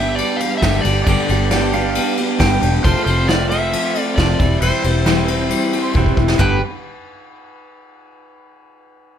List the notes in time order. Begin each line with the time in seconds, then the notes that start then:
Already playing: G1 G2 G3 B3 D4 G4 B4 E5
0.00 B3
0.15 G3 D5, ride
0.20 B3 D4 G4
0.37 F5, ride
0.42 G3 B3 D4 G4
0.58 E5
0.62 G1 G2 D3 G3 B3 D4 G4, kick, snare, ride
0.81 G4 D5, ride
0.85 G1 G3 B3 D4
1.05 G1 G2 D3 G3 B3 D4 G4 D5, kick, ride
1.29 G1 G3 B3 D4 G4, ride
1.51 G2 D3 G3 B3 D4 G4, snare, ride
1.73 G3 B3 D4 G4 F5, ride
1.95 G3 B3 D4 G4, ride
2.17 G3 B3 D4 G4, ride
2.39 G1 G2 D3 G3 B3 D4 G4 G5, kick, snare, ride
2.62 E1 G3 B3 D4 G4, ride
2.83 F1 F2 C3 F3 A3 C4 F4 A4 C5, kick, ride
3.05 F1 F3 A3 C4 F4 A4 C5, ride
3.27 F3 A3 C4 F4 A4 D5, snare, ride
3.49 C4 F4 A4 E5, ride
3.53 F3 A3
3.72 F3 C4 F4 A4, ride
3.94 C4 F4 A4, ride
4.01 D5
4.16 F1 F2 C3 F3 A3 C4 F4 A4 D5, kick, snare, ride
4.39 E1 E3 G3 C4 E4 G4 C5, kick, ride
4.62 E1 E3 G3 C4 E4 G4 C5, ride
4.84 E1 G3 C4 E4 G4, ride
5.06 E3 G3 C4 E4 G4, snare, ride
5.28 G3 C4 E4 G4, ride
5.50 G3 C4 E4 G4, ride
5.73 C4 E4 G4, ride
5.93 E1 E3 G3 C4 E4 G4, kick
6.06 kick
6.17 E1 G3 C4 E4 G4, kick
6.28 snare
6.38 G1 G2 D3 G3 B3 D4 G4 B4 G5, kick, floor tom, splash